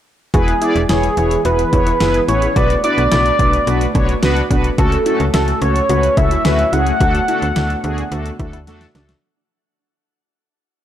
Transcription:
0.34 E1 E3 B3 E4 F#4 G#4 B4, kick, closed hi-hat
0.48 closed hi-hat
0.62 B3 E4 G#4 D5, closed hi-hat
0.76 E1, closed hi-hat
0.89 E1 B3 E4 G#4 C#5, snare, closed hi-hat
1.03 closed hi-hat
1.17 E1 B3 E4 G#4 C#5, closed hi-hat
1.31 closed hi-hat
1.45 E1 B3 E4 F#4 G#4 B4, closed hi-hat
1.59 closed hi-hat
1.73 E1 B3 E4 G#4 C#5, kick, closed hi-hat
1.87 E4, closed hi-hat
2.00 F#1 B3 E4 G#4 B4, snare, closed hi-hat
2.14 closed hi-hat
2.28 A1 B3 E4 G#4 B4 C#5, closed hi-hat
2.42 closed hi-hat
2.56 B1 A3 B3 D4 F#4 B4 D5, kick, closed hi-hat
2.70 closed hi-hat
2.84 B3 D4 E4 F#4 B4 D5, closed hi-hat
2.98 B1, closed hi-hat
3.12 B1 B3 D4 E4 F#4 B4, snare, closed hi-hat
3.26 closed hi-hat
3.39 B1 B3 D4 F#4 B4, kick, closed hi-hat
3.53 closed hi-hat
3.67 B1 B3 D4 F#4 B4, closed hi-hat
3.81 closed hi-hat
3.95 B1 B3 D4 F#4 C#5, kick, closed hi-hat
4.09 D4, closed hi-hat
4.23 C#2 B3 D4 F#4 B4, snare, closed hi-hat
4.36 closed hi-hat
4.50 B1 B3 D4 F#4 B4, kick, closed hi-hat
4.64 closed hi-hat
4.78 C#2 F#3 A3 C#4 F#4 A4, kick, closed hi-hat
4.92 closed hi-hat
5.06 A3 C#4 E4 F#4 A4, closed hi-hat
5.20 C#2, closed hi-hat
5.34 C#2 A3 C#4 E4 F#4 A4, snare, closed hi-hat
5.48 closed hi-hat
5.62 C#2 A3 C#4 F#4 A4 C#5, closed hi-hat
5.76 closed hi-hat
5.89 C#2 A3 C#4 F#4 B4, closed hi-hat
6.03 closed hi-hat
6.17 C#2 A3 C#4 E4 F#4 A4 E5, kick, closed hi-hat
6.31 E4, closed hi-hat
6.45 D2 A3 C#4 F#4 G#4 B4, snare, closed hi-hat
6.59 closed hi-hat
6.73 C#2 A3 C#4 E4 F#4 G#4 F#5, closed hi-hat
6.87 closed hi-hat
7.00 D2 D3 A3 B3 D4 F#4 A4, kick, closed hi-hat
7.15 closed hi-hat
7.28 A3 D4 E4 F#4 A4, closed hi-hat
7.42 D2, closed hi-hat
7.56 D2 A3 D4 E4 F#4 A4, snare, closed hi-hat
7.70 closed hi-hat
7.84 D2 A3 D4 F#4 G#4, closed hi-hat
7.98 closed hi-hat
8.12 D2 A3 D4 F#4 A4, closed hi-hat
8.26 closed hi-hat
8.39 D2 A3 D4 E4 F#4 A4, kick, closed hi-hat
8.53 E4, closed hi-hat
8.67 E2 A3 D4 F#4 A4, snare, closed hi-hat
8.81 snare, closed hi-hat
8.95 C#2 A3 D4 F#4 A4, snare, closed hi-hat
9.09 snare, closed hi-hat

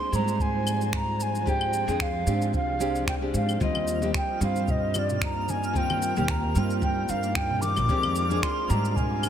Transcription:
Already playing: F3 D4 F4 G#4 C5 C6
0.12 G#2 G3 G#3 C4 D4 A#5, shaker
0.28 shaker
0.39 G#5, kick, shaker
0.67 claves, shaker
0.81 shaker
0.93 A#5, finger snap, kick, shaker
1.20 G#5, shaker
1.35 shaker
1.46 G#3 C4 D4 G4 G5, kick, shaker
1.61 claves
1.73 shaker
1.87 F2 G#3 C4 D4 G#4, shaker
2.00 F5, finger snap, kick, shaker
2.25 G#2 G#3 C4 D4 G4, shaker
2.42 shaker
2.53 C2 F5, kick, shaker
2.79 G#3 C4 D4 G4, shaker
2.95 shaker
3.07 G5, finger snap, kick, shaker
3.21 G#3 C4 D4 G4
3.34 G#2 F5, shaker
3.49 claves, shaker
3.60 D#2 G3 A#3 C4 D#4 F4 A#4 D#5 F6, kick, muted conga, high conga, shaker
3.75 high conga, claves
3.87 shaker
4.02 G3 A#3 C4 G4, muted conga, shaker
4.14 G5, finger snap, kick, shaker
4.40 G2 G3 A#3 C4 F4 F5, shaker
4.56 muted conga, shaker
4.68 D#5, kick, low conga, shaker
4.94 muted conga, claves, shaker
4.98 D5
5.09 low conga, shaker
5.21 A#5, finger snap, kick, shaker
5.49 G#5, muted conga, high conga, shaker
5.64 shaker
5.73 G3 A#3 C4 F4 D5 G5, kick, high conga, shaker
5.90 muted conga, high conga, claves
6.02 shaker
6.16 D#2 G3 A#3 C4 G4, low conga, shaker
6.28 A#5, finger snap, kick, shaker
6.44 muted conga
6.54 G2 G3 A#3 C4 F4, shaker
6.70 shaker
6.82 G5, kick, muted conga, shaker
7.09 G2 F5, shaker
7.23 shaker
7.35 G5, finger snap, kick, muted conga, shaker
7.50 low conga
7.61 D6, high conga, shaker
7.76 A#1, muted conga, claves, shaker
7.88 F2 F3 G#3 C4 D4 G4 C5, kick, high conga, shaker
8.03 high conga, claves
8.15 shaker
8.30 G#3 C4 D4 G#4, muted conga, shaker
8.42 C6, finger snap, kick, shaker
8.68 G#2 G3 G#3 C4 D4 A#5, muted conga, shaker
8.85 shaker
8.92 G#5 A#5, kick
8.96 low conga, shaker
9.23 muted conga, claves, shaker

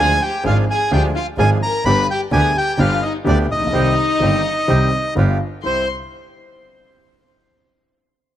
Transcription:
Already playing: D2 D3 F3 G#3 D4 F4 G#4
0.00 G#4 G#5
0.22 G4 G5
0.44 G#1 G#2 F3 G#3 D4 F4 G#4 F5
0.71 G#4 G#5
0.91 D2 D3 F3 G#3 D4 F4 G#4 G5
0.95 G4
1.16 F4 F5
1.38 G#1 G#2 F3 G#3 D4 F4 G#4 G#5
1.63 A#4 A#5
1.85 G1 G2 D3 G3 B3 D4 G4 B4 B5
2.11 G4 G5
2.31 D2 D3 G3 B3 D4 G4 G#4 G#5
2.57 G4 G5
2.78 G1 G2 D3 G3 B3 D4 F4 G4 F5
3.02 D#4 D#5
3.24 D2 D3 G3 B3 D4 G4 D5
3.29 D4
3.50 A#1 D#4 D#5
3.56 A1
3.60 A#1
3.67 B1
3.73 C2 C3 D#3 G3 C4 D#4 G4
4.20 G1 G2 D#3 G3 C4 D#4 G4
4.67 C2 C3 D#3 G3 C4 D#4 G4
5.15 G1 G2 D3 G3 B3 F4 G4
5.63 C2 G3 C4 E4 G4 C5 C6

